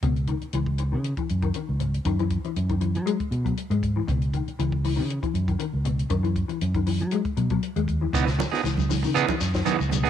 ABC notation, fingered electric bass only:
X:1
M:4/4
L:1/16
Q:"Swing 16ths" 1/4=118
K:C#m
V:1 name="Fingered electric bass" clef=bass
C,,3 z C,,3 C,2 z F,,2 z C,,3 | F,,3 z F,,3 F,2 z B,,2 z G,,3 | C,,3 z C,,3 C,2 z F,,2 z C,,3 | F,,3 z F,,3 F,2 z B,,2 z D,,3 |
C,,3 z C,,3 C,2 z F,,2 z C,,3 |]